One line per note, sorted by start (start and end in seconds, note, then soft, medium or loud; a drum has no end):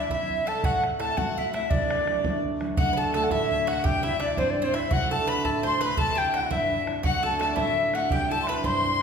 0.00 0.69 C2 medium
0.00 0.59 A3 soft
0.00 0.10 C4 soft
0.00 2.06 D4 soft
0.00 0.11 E4 medium
0.00 0.10 E5 medium
0.09 0.45 G3 soft
0.09 0.46 C4 soft
0.09 0.47 E4 medium
0.09 0.46 E4 medium
0.09 0.48 E5 medium
0.09 0.50 E5 medium
0.09 bodhran medium
0.30 bodhran soft
0.46 0.69 G3 medium
0.46 0.63 A4 medium
0.46 0.63 A5 medium
0.46 0.67 A5 medium
0.46 bodhran soft
0.63 1.75 A2 medium
0.63 0.82 F#4 medium
0.63 0.82 F#5 medium
0.63 0.84 F#5 loud
0.63 bodhran medium
0.84 bodhran medium
0.99 1.16 A3 medium
0.99 1.16 C4 soft
0.99 1.17 E4 medium
0.99 1.16 A4 medium
0.99 1.19 A5 medium
0.99 bodhran medium
1.16 1.53 A3 soft
1.16 1.53 C4 soft
1.16 1.54 E4 medium
1.16 1.37 F#4 medium
1.16 1.53 F#5 medium
1.16 1.40 F#5 medium
1.16 bodhran medium
1.37 1.52 E4 medium
1.37 1.54 E5 medium
1.37 bodhran soft
1.53 2.97 A3 soft
1.53 4.02 C4 soft
1.53 1.71 E4 medium
1.53 2.07 E4 medium
1.53 1.72 E5 medium
1.53 bodhran medium
1.70 2.76 D2 medium
1.70 2.39 D4 medium
1.70 2.43 D5 medium
1.70 bodhran medium
1.91 bodhran medium
2.06 2.23 F#3 soft
2.06 2.25 D4 soft
2.06 2.24 E4 medium
2.06 bodhran medium
2.24 2.60 F#3 soft
2.24 2.61 D4 soft
2.24 2.61 E4 medium
2.24 bodhran medium
2.44 bodhran soft
2.61 2.82 F#3 soft
2.61 2.97 D4 soft
2.61 4.03 E4 soft
2.61 bodhran medium
2.77 3.89 D2 medium
2.77 2.91 F#4 medium
2.77 2.98 F#5 medium
2.77 2.96 F#5 medium
2.77 bodhran medium
2.87 bodhran soft
2.93 2.97 B4 medium
2.93 3.14 A5 medium
2.93 3.13 A5 medium
2.97 3.13 A3 soft
2.97 3.14 D4 soft
2.97 3.14 F#4 medium
2.97 3.13 A4 medium
2.97 bodhran soft
3.13 3.49 A3 medium
3.13 3.49 D4 soft
3.13 3.50 F#4 medium
3.13 3.31 A4 medium
3.13 3.30 A5 medium
3.13 3.25 A5 medium
3.13 bodhran medium
3.24 3.33 F#5 medium
3.31 3.89 A2 medium
3.31 3.65 E4 medium
3.31 3.49 E5 medium
3.31 3.70 E5 medium
3.31 bodhran medium
3.50 3.66 A3 soft
3.50 3.67 D4 soft
3.50 3.68 F#4 soft
3.50 3.66 E5 medium
3.50 bodhran soft
3.67 5.09 A3 soft
3.67 4.03 D4 soft
3.67 3.83 F#4 medium
3.67 4.44 F#4 medium
3.67 3.85 F#5 medium
3.67 3.88 F#5 medium
3.67 bodhran medium
3.83 4.96 C2 medium
3.83 4.03 G4 medium
3.83 4.05 G5 medium
3.83 4.04 G5 loud
3.83 bodhran medium
4.03 4.19 C4 soft
4.03 4.20 D4 soft
4.03 4.19 E4 medium
4.03 4.20 E4 soft
4.03 4.23 E5 medium
4.03 4.21 E5 medium
4.03 bodhran soft
4.20 4.56 C4 soft
4.20 4.37 D4 medium
4.20 4.57 D4 medium
4.20 4.57 E4 soft
4.20 4.39 D5 medium
4.20 4.40 D5 medium
4.20 bodhran medium
4.37 4.96 G2 medium
4.37 4.50 C4 medium
4.37 4.50 C5 medium
4.37 4.52 C5 loud
4.37 bodhran medium
4.50 4.66 D5 medium
4.57 4.73 C4 soft
4.57 4.74 D4 soft
4.57 4.74 E4 medium
4.62 4.73 C4 medium
4.62 4.76 C5 medium
4.62 4.77 C5 medium
4.73 6.16 C4 soft
4.73 5.10 D4 soft
4.73 4.90 E4 medium
4.73 6.17 E4 medium
4.73 4.91 E5 medium
4.73 4.95 E5 medium
4.73 bodhran medium
4.90 6.02 D2 medium
4.90 5.11 F#4 medium
4.90 5.09 F#5 medium
4.90 5.14 F#5 loud
4.90 bodhran medium
5.09 5.26 A3 soft
5.09 5.27 D4 soft
5.09 5.28 F#4 medium
5.09 5.27 A4 medium
5.09 5.29 A5 loud
5.09 5.31 A5 medium
5.09 bodhran soft
5.27 5.63 A3 medium
5.27 5.64 D4 soft
5.27 5.64 F#4 medium
5.27 5.43 B4 medium
5.27 5.46 B5 medium
5.27 5.47 B5 medium
5.27 bodhran medium
5.44 6.02 A2 medium
5.44 5.63 A4 medium
5.44 5.64 A5 medium
5.44 bodhran medium
5.63 5.80 A3 soft
5.63 5.80 D4 soft
5.63 5.81 F#4 soft
5.63 5.80 C5 medium
5.63 5.83 C6 medium
5.63 5.81 C6 loud
5.63 bodhran soft
5.80 7.22 A3 soft
5.80 6.17 D4 soft
5.80 6.58 F#4 medium
5.80 5.96 B4 loud
5.80 6.00 B5 medium
5.80 5.98 B5 medium
5.80 bodhran medium
5.97 7.09 C2 medium
5.97 6.15 A4 medium
5.97 6.19 A5 loud
5.97 6.20 A5 loud
5.97 bodhran medium
6.08 bodhran soft
6.15 6.33 C4 soft
6.15 6.34 D4 soft
6.15 6.35 E4 medium
6.15 6.32 G4 medium
6.15 6.52 G5 medium
6.15 6.34 G5 loud
6.15 bodhran soft
6.34 6.69 C4 soft
6.34 6.70 D4 soft
6.34 6.70 E4 medium
6.34 6.50 F#4 medium
6.34 6.40 F#5 medium
6.34 bodhran medium
6.44 6.54 F#5 medium
6.51 7.09 G2 medium
6.51 6.88 E4 medium
6.51 6.91 E5 medium
6.51 6.82 E5 loud
6.51 bodhran medium
6.70 6.86 C4 soft
6.70 6.87 D4 soft
6.70 6.87 E4 medium
6.70 bodhran soft
6.86 8.28 C4 soft
6.86 7.22 D4 soft
6.86 8.29 E4 medium
6.86 bodhran medium
7.03 8.16 D2 medium
7.03 7.22 F#4 medium
7.03 7.25 F#5 loud
7.03 7.23 F#5 medium
7.03 bodhran medium
7.22 7.39 A3 soft
7.22 7.39 D4 soft
7.22 7.39 F#4 medium
7.22 7.38 A4 medium
7.22 7.40 A5 medium
7.22 7.41 A5 medium
7.22 bodhran soft
7.39 7.75 A3 medium
7.39 7.76 D4 soft
7.39 7.76 F#4 medium
7.39 7.57 A4 medium
7.39 7.50 A5 medium
7.39 7.57 A5 medium
7.39 bodhran medium
7.51 7.59 D5 medium
7.56 8.16 A2 medium
7.56 7.94 E4 medium
7.56 7.93 E5 medium
7.56 7.97 E5 loud
7.56 bodhran medium
7.76 7.92 A3 soft
7.76 7.94 D4 soft
7.76 7.94 F#4 soft
7.93 9.02 A3 soft
7.93 8.29 D4 soft
7.93 8.69 F#4 medium
7.93 8.10 F#4 medium
7.93 8.11 F#5 medium
7.93 8.12 F#5 medium
7.93 bodhran medium
8.09 9.02 C2 medium
8.09 8.29 G4 medium
8.09 8.30 G5 medium
8.09 bodhran medium
8.13 8.33 G5 loud
8.21 bodhran soft
8.29 8.45 C4 soft
8.29 8.47 D4 soft
8.29 8.47 E4 soft
8.29 8.47 A4 medium
8.29 8.50 A5 medium
8.29 8.42 A5 loud
8.29 bodhran soft
8.43 8.83 C4 soft
8.43 8.50 C6 medium
8.47 8.83 D4 soft
8.47 8.84 E4 medium
8.47 8.64 B4 medium
8.47 8.67 B5 medium
8.47 8.64 B5 medium
8.47 bodhran medium
8.63 9.02 G2 medium
8.63 9.02 C5 medium
8.63 9.02 C6 medium
8.63 9.02 C6 loud
8.63 bodhran medium
8.83 8.99 C4 soft
8.83 9.00 D4 soft
8.83 9.00 E4 medium
8.83 bodhran soft